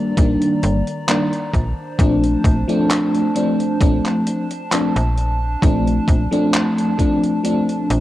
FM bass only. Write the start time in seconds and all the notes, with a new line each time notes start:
0.17 A#1
0.63 G1
1.53 A#1
1.99 A#1
2.44 A#1
3.81 A#1
4.96 A#1
5.62 A#1
6.08 A#1
7.90 A#1